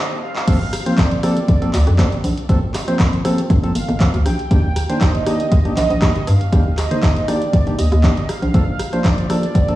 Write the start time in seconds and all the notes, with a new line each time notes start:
Already playing: G3 G4 C5 D#5
0.22 F5
0.36 clap
0.47 G1 F3 A#3 C4 A4, kick, closed hi-hat, crash
0.73 cross-stick, open hi-hat
0.86 F3 A#3 C4 C5, closed hi-hat
0.98 G1 D5, kick, clap, closed hi-hat
1.11 closed hi-hat
1.23 F3 A#3 C4 A4 D5, cross-stick, open hi-hat
1.37 closed hi-hat
1.48 G1, kick, closed hi-hat
1.62 F3 A#3 C4 A4, closed hi-hat
1.73 D2, clap, open hi-hat
1.87 F2, closed hi-hat
1.99 F3 A#3 C4 A4, kick, cross-stick, clap, closed hi-hat
2.12 closed hi-hat
2.24 A#1, open hi-hat
2.37 closed hi-hat
2.49 G1 F3 A#3 C4 A4, kick, closed hi-hat
2.74 cross-stick, clap, open hi-hat
2.88 F3 A#3 C4 C5, closed hi-hat
2.99 G1, kick, clap, closed hi-hat
3.13 closed hi-hat
3.25 F3 A#3 C4 A4, cross-stick, open hi-hat
3.38 closed hi-hat
3.50 G2, kick, closed hi-hat
3.63 F3 A#3 C4 A4, closed hi-hat
3.75 G1 F5, open hi-hat
3.89 G1, closed hi-hat
4.00 F3 A#3 C4 A4, kick, clap, closed hi-hat
4.14 D2, closed hi-hat
4.25 A#1 G5, cross-stick, open hi-hat
4.39 closed hi-hat
4.51 D#2 D#3 A#3 D4 G4, kick, closed hi-hat
4.76 cross-stick, open hi-hat
4.89 D#3 A#3 D4 C5, closed hi-hat
5.01 D#2 D#5, kick, clap, closed hi-hat
5.15 closed hi-hat
5.26 D#3 A#3 D4 G4 D#5, cross-stick, open hi-hat
5.40 closed hi-hat
5.52 D#2, kick, closed hi-hat
5.65 D#3 A#3 D4 G4, closed hi-hat
5.77 A#1 D#5, clap, open hi-hat
5.90 A#1, closed hi-hat
6.02 D#3 A#3 D4 G4, kick, cross-stick, clap, closed hi-hat
6.16 closed hi-hat
6.27 G2 F5, open hi-hat
6.41 closed hi-hat
6.52 D#2 D#3 A#3 D4 G4, kick, closed hi-hat
6.71 F5
6.78 D#5, cross-stick, clap, open hi-hat
6.91 D3 D#3 A#3 C5, closed hi-hat
7.03 D#2, kick, clap, closed hi-hat
7.16 closed hi-hat
7.28 D#3 A#3 D4 G4 D5, cross-stick, open hi-hat
7.42 closed hi-hat
7.53 D#1, kick, closed hi-hat
7.67 D#3 A#3 D4 G4, closed hi-hat
7.78 D#2 D#5, open hi-hat
7.92 D#2, closed hi-hat
8.04 D#3 A#3 D4 G4, kick, clap, closed hi-hat
8.17 closed hi-hat
8.29 F5, cross-stick, open hi-hat
8.42 A#1, closed hi-hat
8.54 A#1 F3 A#3 D4 A4, kick, closed hi-hat
8.79 cross-stick, open hi-hat
8.93 F3 A#3 D4 C5, closed hi-hat
9.04 A#1 D5, kick, clap, closed hi-hat
9.18 closed hi-hat
9.30 F3 A#3 D4 A4 D5, cross-stick, open hi-hat
9.43 closed hi-hat
9.55 A#1, kick, closed hi-hat
9.68 F3 A#3 D4 A4, closed hi-hat